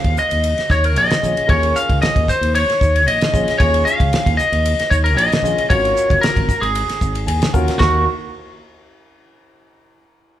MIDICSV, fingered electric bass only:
0, 0, Header, 1, 3, 480
1, 0, Start_track
1, 0, Tempo, 526316
1, 1356, Time_signature, 4, 2, 24, 8
1, 9485, End_track
2, 0, Start_track
2, 0, Title_t, "Fingered electric bass"
2, 0, Program_c, 0, 33
2, 43, Note_on_c, 0, 39, 84
2, 136, Note_off_c, 0, 39, 0
2, 289, Note_on_c, 0, 39, 74
2, 485, Note_off_c, 0, 39, 0
2, 635, Note_on_c, 0, 39, 82
2, 891, Note_off_c, 0, 39, 0
2, 891, Note_on_c, 0, 34, 80
2, 989, Note_off_c, 0, 34, 0
2, 1123, Note_on_c, 0, 34, 85
2, 1225, Note_off_c, 0, 34, 0
2, 1359, Note_on_c, 0, 39, 87
2, 1557, Note_off_c, 0, 39, 0
2, 1730, Note_on_c, 0, 37, 80
2, 1821, Note_off_c, 0, 37, 0
2, 1970, Note_on_c, 0, 39, 77
2, 2061, Note_off_c, 0, 39, 0
2, 2200, Note_on_c, 0, 39, 83
2, 2401, Note_off_c, 0, 39, 0
2, 2566, Note_on_c, 0, 39, 82
2, 2802, Note_off_c, 0, 39, 0
2, 2802, Note_on_c, 0, 34, 81
2, 2905, Note_off_c, 0, 34, 0
2, 3045, Note_on_c, 0, 34, 89
2, 3147, Note_off_c, 0, 34, 0
2, 3284, Note_on_c, 0, 39, 95
2, 3481, Note_off_c, 0, 39, 0
2, 3648, Note_on_c, 0, 37, 79
2, 3741, Note_off_c, 0, 37, 0
2, 3887, Note_on_c, 0, 39, 83
2, 3981, Note_off_c, 0, 39, 0
2, 4125, Note_on_c, 0, 39, 86
2, 4324, Note_off_c, 0, 39, 0
2, 4479, Note_on_c, 0, 39, 82
2, 4705, Note_off_c, 0, 39, 0
2, 4705, Note_on_c, 0, 34, 90
2, 4816, Note_off_c, 0, 34, 0
2, 4946, Note_on_c, 0, 34, 100
2, 5056, Note_off_c, 0, 34, 0
2, 5202, Note_on_c, 0, 32, 90
2, 5400, Note_off_c, 0, 32, 0
2, 5569, Note_on_c, 0, 30, 85
2, 5662, Note_off_c, 0, 30, 0
2, 5803, Note_on_c, 0, 32, 92
2, 5898, Note_off_c, 0, 32, 0
2, 6035, Note_on_c, 0, 32, 94
2, 6238, Note_off_c, 0, 32, 0
2, 6398, Note_on_c, 0, 32, 84
2, 6632, Note_on_c, 0, 39, 88
2, 6645, Note_off_c, 0, 32, 0
2, 6739, Note_off_c, 0, 39, 0
2, 6877, Note_on_c, 0, 39, 91
2, 6982, Note_off_c, 0, 39, 0
2, 7117, Note_on_c, 0, 39, 84
2, 7341, Note_off_c, 0, 39, 0
2, 9485, End_track
3, 0, Start_track
3, 0, Title_t, "Muted fingered electric bass strokes"
3, 536, Note_on_c, 9, 29, 35
3, 627, Note_off_c, 9, 29, 0
3, 1253, Note_on_c, 9, 29, 33
3, 1344, Note_off_c, 9, 29, 0
3, 1843, Note_on_c, 9, 29, 31
3, 1935, Note_off_c, 9, 29, 0
3, 2444, Note_on_c, 9, 29, 39
3, 2535, Note_off_c, 9, 29, 0
3, 3177, Note_on_c, 9, 29, 37
3, 3268, Note_off_c, 9, 29, 0
3, 3766, Note_on_c, 9, 29, 33
3, 3857, Note_off_c, 9, 29, 0
3, 5075, Note_on_c, 9, 29, 36
3, 5167, Note_off_c, 9, 29, 0
3, 5668, Note_on_c, 9, 29, 36
3, 5759, Note_off_c, 9, 29, 0
3, 6272, Note_on_c, 9, 29, 37
3, 6363, Note_off_c, 9, 29, 0
3, 7009, Note_on_c, 9, 29, 35
3, 7101, Note_off_c, 9, 29, 0
3, 9485, End_track
0, 0, End_of_file